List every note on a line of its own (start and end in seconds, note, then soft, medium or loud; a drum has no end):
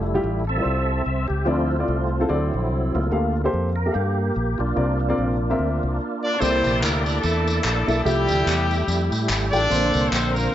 0.00 0.17 F1 medium
0.00 0.45 G3 medium
0.00 0.45 A3 soft
0.00 0.45 E4 medium
0.14 0.38 G3 medium
0.14 0.38 E4 medium
0.14 0.38 F4 medium
0.14 0.38 G4 medium
0.23 0.59 A1 medium
0.47 1.27 C4 medium
0.47 1.02 A4 medium
0.47 1.27 E5 medium
0.56 1.01 G3 medium
0.56 1.01 E4 medium
0.56 1.02 F4 medium
0.56 0.61 A#4 medium
0.62 1.00 C2 medium
0.62 1.04 C5 medium
1.06 1.26 C2 medium
1.28 1.45 C#2 medium
1.28 1.47 G4 medium
1.45 1.82 D2 medium
1.45 2.08 D3 medium
1.45 1.76 F3 soft
1.45 2.26 A3 medium
1.45 2.25 C4 medium
1.45 1.67 C4 medium
1.45 1.67 E4 medium
1.45 1.76 E4 medium
1.45 2.25 F4 medium
1.45 1.67 F4 medium
1.45 1.67 D5 medium
1.79 2.03 C4 medium
1.79 2.03 E4 medium
1.79 2.03 F4 medium
1.79 2.03 D5 medium
1.88 2.23 C2 medium
2.20 2.27 C4 medium
2.20 2.29 E4 medium
2.20 2.30 F4 medium
2.20 2.28 A4 medium
2.29 2.50 D2 medium
2.29 2.90 D3 medium
2.29 3.08 F#3 soft
2.29 2.98 C4 medium
2.29 3.08 C4 soft
2.29 3.08 E4 medium
2.29 2.98 F#4 medium
2.29 2.98 A4 medium
2.29 2.98 D5 medium
2.54 2.71 A#1 medium
2.71 2.91 C2 medium
2.95 3.09 C#2 medium
2.95 3.10 A3 medium
2.95 3.11 A#3 medium
2.95 3.12 F4 medium
3.11 3.47 D2 medium
3.11 3.73 D3 medium
3.11 3.41 A3 soft
3.11 3.32 A#3 medium
3.11 3.41 A#3 soft
3.11 3.42 F4 medium
3.11 3.32 G4 medium
3.11 3.32 A4 medium
3.11 3.32 F5 medium
3.44 3.68 A#3 medium
3.44 3.68 G4 medium
3.44 3.68 A4 medium
3.44 3.68 C5 medium
3.53 3.88 F2 medium
3.76 3.94 A#4 medium
3.86 4.31 A#3 medium
3.86 4.31 G4 medium
3.86 4.31 A4 medium
3.86 3.90 E5 medium
3.92 4.30 G2 medium
3.92 4.61 G4 medium
3.92 4.34 F5 medium
3.96 4.59 A#3 medium
4.36 4.56 A#1 medium
4.58 4.74 B1 medium
4.58 4.99 A#3 medium
4.58 4.99 D4 medium
4.58 5.00 F4 medium
4.76 5.12 C2 medium
4.76 5.37 C3 medium
4.76 4.96 C4 medium
4.76 4.96 F4 medium
4.76 4.96 A#4 medium
4.76 4.97 D5 medium
5.00 6.37 A#3 medium
5.00 6.37 D4 soft
5.00 6.37 F4 medium
5.09 5.32 C4 medium
5.09 5.32 F4 medium
5.09 5.33 A#4 medium
5.09 5.33 D5 medium
5.18 5.53 A#1 medium
5.50 5.95 C4 medium
5.50 5.95 F4 medium
5.50 5.96 A#4 medium
5.50 5.96 E5 medium
5.59 5.79 D2 medium
5.83 5.98 C2 medium
6.24 6.40 D4 medium
6.24 6.40 D5 loud
6.40 6.62 C2 medium
6.40 7.02 C3 medium
6.40 8.02 A#3 medium
6.40 6.88 A#3 medium
6.40 6.82 C4 loud
6.40 8.02 E4 medium
6.40 7.20 E4 medium
6.40 6.88 E4 medium
6.40 7.20 G4 medium
6.40 8.02 A4 medium
6.40 6.88 A4 medium
6.40 6.82 C5 loud
6.40 8.02 D5 medium
6.40 6.88 D5 medium
6.40 tambourine medium
6.64 6.80 A#1 medium
6.64 tambourine medium
6.81 7.17 D2 medium
6.81 7.06 A#3 medium
6.81 7.06 A#4 medium
6.81 clap medium
6.81 tambourine medium
7.05 7.22 D4 loud
7.05 7.23 D5 loud
7.05 tambourine medium
7.21 7.59 E2 medium
7.21 7.61 A3 medium
7.21 7.63 D4 medium
7.21 7.64 E4 medium
7.21 7.61 A4 medium
7.21 tambourine medium
7.47 tambourine medium
7.63 7.84 A#1 medium
7.63 8.02 A3 medium
7.63 8.03 D4 medium
7.63 8.03 E4 medium
7.63 8.02 A4 medium
7.63 clap loud
7.63 tambourine loud
7.87 8.03 B1 medium
7.87 7.98 A#3 medium
7.87 7.98 E4 medium
7.87 7.98 A4 medium
7.87 7.98 E5 medium
7.87 tambourine medium
8.04 8.26 C2 medium
8.04 8.66 C3 medium
8.04 8.52 F3 medium
8.04 9.28 G3 loud
8.04 9.67 G3 medium
8.04 8.52 A3 medium
8.04 9.67 A3 medium
8.04 9.67 E4 medium
8.04 9.25 E4 medium
8.04 9.28 G4 loud
8.04 9.67 G4 medium
8.04 8.52 G4 medium
8.04 8.52 E5 medium
8.04 tambourine medium
8.28 8.44 D2 medium
8.28 tambourine medium
8.46 8.82 E2 medium
8.46 clap loud
8.46 tambourine medium
8.71 tambourine medium
8.87 9.08 F2 medium
8.87 tambourine medium
9.11 9.26 A2 medium
9.11 tambourine medium
9.29 9.49 G#1 medium
9.29 clap loud
9.29 tambourine loud
9.51 9.68 A1 medium
9.51 9.62 A3 medium
9.51 10.07 D4 loud
9.51 9.63 F4 medium
9.51 10.32 F4 medium
9.51 9.63 G4 medium
9.51 10.32 A4 medium
9.51 10.07 D5 loud
9.51 9.63 G5 medium
9.51 tambourine medium
9.70 9.91 A#1 medium
9.70 10.32 A#2 medium
9.70 10.55 D3 medium
9.70 10.17 A#3 medium
9.70 10.55 A#3 medium
9.70 9.76 C4 medium
9.70 10.55 C4 medium
9.70 10.17 A4 medium
9.70 10.55 C5 medium
9.70 10.18 C5 medium
9.70 tambourine medium
9.75 10.20 D4 medium
9.94 10.09 C2 loud
9.94 tambourine medium
10.09 10.47 A#1 medium
10.09 10.34 C4 medium
10.09 10.34 C5 loud
10.09 clap medium
10.09 tambourine medium
10.34 10.55 A#3 loud
10.34 10.55 D4 medium
10.34 10.55 F4 medium
10.34 10.55 A#4 loud
10.34 tambourine medium